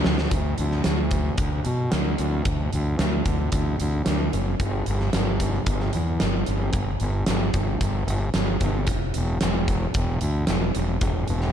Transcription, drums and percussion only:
0.04 snare medium
0.18 snare loud
0.31 kick loud
0.31 closed hi-hat medium
0.58 closed hi-hat medium
0.71 snare soft
0.84 snare loud
0.84 closed hi-hat medium
1.11 kick medium
1.11 closed hi-hat medium
1.38 kick loud
1.38 closed hi-hat medium
1.65 closed hi-hat medium
1.92 snare loud
1.92 closed hi-hat medium
2.18 closed hi-hat medium
2.45 kick loud
2.45 closed hi-hat medium
2.73 closed hi-hat medium
2.99 snare loud
2.99 closed hi-hat medium
3.26 kick medium
3.26 closed hi-hat medium
3.52 kick loud
3.52 closed hi-hat medium
3.80 closed hi-hat medium
4.06 snare loud
4.06 closed hi-hat medium
4.33 closed hi-hat medium
4.60 kick loud
4.60 closed hi-hat medium
4.86 closed hi-hat medium
5.00 snare soft
5.13 snare loud
5.13 closed hi-hat medium
5.40 kick medium
5.40 closed hi-hat medium
5.66 kick loud
5.66 closed hi-hat medium
5.80 snare soft
5.93 closed hi-hat medium
6.20 snare loud
6.20 closed hi-hat medium
6.46 closed hi-hat medium
6.73 kick loud
6.73 closed hi-hat medium
7.00 closed hi-hat medium
7.26 snare loud
7.26 closed hi-hat medium
7.54 kick medium
7.54 closed hi-hat medium
7.81 kick loud
7.81 closed hi-hat medium
8.08 closed hi-hat medium
8.34 snare loud
8.34 closed hi-hat medium
8.61 kick medium
8.61 closed hi-hat medium
8.87 kick loud
8.87 closed hi-hat medium
9.14 closed hi-hat medium
9.41 snare loud
9.41 closed hi-hat medium
9.68 kick medium
9.68 closed hi-hat medium
9.94 kick loud
9.94 closed hi-hat medium
10.21 closed hi-hat medium
10.47 snare loud
10.47 closed hi-hat medium
10.75 closed hi-hat medium
11.01 kick loud
11.01 closed hi-hat medium
11.28 closed hi-hat medium
11.41 snare soft

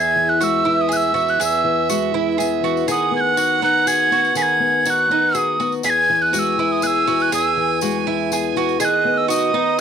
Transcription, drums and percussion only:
0.41 tambourine medium
0.92 tambourine medium
1.16 tambourine soft
1.28 tambourine soft
1.41 tambourine loud
1.90 tambourine loud
2.40 tambourine loud
2.64 tambourine soft
2.77 tambourine soft
2.88 tambourine medium
3.37 tambourine medium
3.87 tambourine medium
4.12 tambourine soft
4.24 tambourine soft
4.35 tambourine medium
4.85 tambourine loud
4.98 tambourine soft
5.35 tambourine medium
5.60 tambourine soft
5.72 tambourine soft
5.83 tambourine medium
6.34 tambourine loud
6.82 tambourine medium
7.08 tambourine soft
7.20 tambourine soft
7.32 tambourine medium
7.81 tambourine loud
8.32 tambourine loud
8.56 tambourine soft
8.69 tambourine soft
8.80 tambourine loud
9.30 tambourine loud

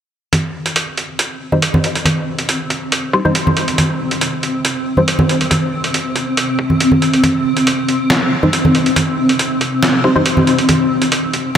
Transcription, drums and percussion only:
0.33 kick loud
0.33 closed hi-hat medium
0.33 high conga medium
0.66 closed hi-hat soft
0.76 closed hi-hat medium
0.97 closed hi-hat soft
1.19 closed hi-hat medium
1.52 high conga medium
1.62 closed hi-hat medium
1.74 high conga medium
1.84 closed hi-hat soft
1.95 closed hi-hat soft
2.05 kick loud
2.05 closed hi-hat medium
2.05 high conga medium
2.39 closed hi-hat soft
2.49 closed hi-hat medium
2.70 kick medium
2.70 closed hi-hat soft
2.92 closed hi-hat medium
3.13 kick loud
3.25 high conga medium
3.35 closed hi-hat medium
3.47 high conga medium
3.57 closed hi-hat soft
3.68 closed hi-hat soft
3.78 kick loud
3.78 closed hi-hat medium
3.78 high conga medium
4.11 closed hi-hat soft
4.21 closed hi-hat medium
4.43 closed hi-hat soft
4.65 closed hi-hat medium
4.97 high conga medium
5.08 closed hi-hat medium
5.19 high conga medium
5.29 closed hi-hat soft
5.41 closed hi-hat soft
5.51 kick loud
5.51 closed hi-hat medium
5.51 high conga medium
5.84 closed hi-hat soft
5.94 closed hi-hat medium
6.16 kick medium
6.16 closed hi-hat soft
6.37 closed hi-hat medium
6.59 kick loud
6.70 high conga medium
6.80 closed hi-hat medium
6.92 high conga medium
7.02 closed hi-hat soft
7.13 closed hi-hat soft
7.24 kick loud
7.24 closed hi-hat medium
7.24 high conga medium
7.57 closed hi-hat soft
7.67 closed hi-hat medium
7.89 closed hi-hat soft
8.10 snare loud
8.10 closed hi-hat medium
8.43 high conga medium
8.53 closed hi-hat medium
8.65 high conga medium
8.75 closed hi-hat soft
8.86 closed hi-hat soft
8.96 kick loud
8.96 closed hi-hat medium
8.96 high conga medium
9.29 closed hi-hat soft
9.39 closed hi-hat medium
9.61 kick medium
9.61 closed hi-hat soft
9.83 snare loud
9.83 closed hi-hat medium
10.04 kick medium
10.16 high conga medium
10.26 closed hi-hat medium
10.37 high conga medium
10.47 closed hi-hat soft
10.58 closed hi-hat soft
10.69 kick loud
10.69 closed hi-hat medium
10.69 high conga medium
11.02 closed hi-hat soft
11.12 closed hi-hat medium
11.34 closed hi-hat soft

